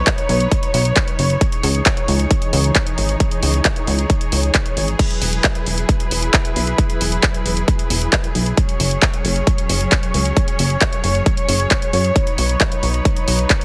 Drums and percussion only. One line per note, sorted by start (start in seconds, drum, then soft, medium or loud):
0.07 kick loud
0.07 clap loud
0.07 closed hi-hat medium
0.18 closed hi-hat soft
0.29 open hi-hat medium
0.40 closed hi-hat soft
0.51 kick loud
0.51 closed hi-hat medium
0.63 closed hi-hat soft
0.74 open hi-hat loud
0.85 closed hi-hat soft
0.96 kick loud
0.96 clap loud
0.96 closed hi-hat medium
1.08 closed hi-hat soft
1.19 open hi-hat medium
1.30 closed hi-hat soft
1.41 kick loud
1.41 closed hi-hat medium
1.52 closed hi-hat soft
1.63 open hi-hat loud
1.75 closed hi-hat soft
1.86 kick loud
1.86 clap loud
1.86 closed hi-hat medium
1.97 closed hi-hat soft
2.08 open hi-hat medium
2.19 closed hi-hat soft
2.31 kick loud
2.31 closed hi-hat medium
2.42 closed hi-hat soft
2.53 open hi-hat loud
2.64 closed hi-hat soft
2.75 kick loud
2.75 clap loud
2.75 closed hi-hat medium
2.87 closed hi-hat soft
2.98 open hi-hat medium
3.09 closed hi-hat soft
3.20 kick loud
3.20 closed hi-hat medium
3.31 closed hi-hat soft
3.43 open hi-hat loud
3.54 closed hi-hat soft
3.65 kick loud
3.65 clap loud
3.65 closed hi-hat medium
3.76 closed hi-hat soft
3.87 open hi-hat medium
3.99 closed hi-hat soft
4.10 kick loud
4.10 closed hi-hat medium
4.21 closed hi-hat soft
4.32 open hi-hat loud
4.43 closed hi-hat soft
4.54 kick loud
4.54 clap loud
4.54 closed hi-hat medium
4.66 closed hi-hat soft
4.77 open hi-hat medium
4.88 closed hi-hat soft
4.99 kick loud
4.99 closed hi-hat medium
4.99 crash medium
5.10 closed hi-hat soft
5.22 open hi-hat loud
5.33 closed hi-hat soft
5.44 kick loud
5.44 clap loud
5.44 closed hi-hat medium
5.55 closed hi-hat soft
5.66 open hi-hat medium
5.78 closed hi-hat soft
5.89 kick loud
5.89 closed hi-hat medium
6.00 closed hi-hat soft
6.11 open hi-hat loud
6.22 closed hi-hat soft
6.34 kick loud
6.34 clap loud
6.34 closed hi-hat medium
6.45 closed hi-hat soft
6.56 open hi-hat medium
6.67 closed hi-hat soft
6.78 kick loud
6.78 closed hi-hat medium
6.90 closed hi-hat soft
7.01 open hi-hat loud
7.12 closed hi-hat soft
7.23 kick loud
7.23 clap loud
7.23 closed hi-hat medium
7.34 closed hi-hat soft
7.46 open hi-hat loud
7.57 closed hi-hat soft
7.68 kick loud
7.68 closed hi-hat medium
7.79 closed hi-hat soft
7.90 open hi-hat loud
8.02 closed hi-hat soft
8.13 kick loud
8.13 clap loud
8.13 closed hi-hat medium
8.24 closed hi-hat soft
8.35 open hi-hat medium
8.46 closed hi-hat soft
8.57 kick loud
8.57 closed hi-hat medium
8.69 closed hi-hat soft
8.80 open hi-hat loud
8.91 closed hi-hat soft
9.02 kick loud
9.02 clap loud
9.02 closed hi-hat medium
9.14 closed hi-hat soft
9.25 open hi-hat loud
9.36 closed hi-hat soft
9.47 kick loud
9.47 closed hi-hat medium
9.58 closed hi-hat soft
9.69 open hi-hat loud
9.81 closed hi-hat soft
9.92 kick loud
9.92 clap loud
9.92 closed hi-hat medium
10.03 closed hi-hat soft
10.14 open hi-hat loud
10.25 closed hi-hat soft
10.37 kick loud
10.37 closed hi-hat medium
10.48 closed hi-hat soft
10.59 open hi-hat loud
10.70 closed hi-hat soft
10.81 kick loud
10.81 clap loud
10.81 closed hi-hat medium
10.93 closed hi-hat soft
11.04 open hi-hat loud
11.15 closed hi-hat soft
11.26 kick loud
11.26 closed hi-hat medium
11.37 closed hi-hat soft
11.49 open hi-hat loud
11.60 closed hi-hat soft
11.71 kick loud
11.71 clap loud
11.71 closed hi-hat medium
11.82 closed hi-hat soft
11.93 open hi-hat loud
12.05 closed hi-hat soft
12.16 kick loud
12.16 closed hi-hat medium
12.27 closed hi-hat soft
12.38 open hi-hat loud
12.49 closed hi-hat soft
12.60 kick loud
12.60 clap loud
12.60 closed hi-hat medium
12.72 closed hi-hat soft
12.83 open hi-hat medium
12.94 closed hi-hat soft
13.05 kick loud
13.05 closed hi-hat medium
13.16 closed hi-hat soft
13.28 open hi-hat loud
13.39 closed hi-hat soft
13.50 kick loud
13.50 clap loud
13.50 closed hi-hat medium
13.61 closed hi-hat soft